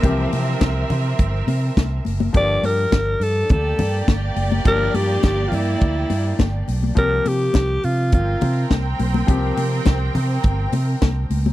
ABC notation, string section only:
X:1
M:4/4
L:1/8
Q:1/4=104
K:Cmix
V:1 name="String section"
[CBe]8 | z4 [B,Gd]4- | [B,Gd]8 | z4 [CBg]4- |
[CBg]8 |]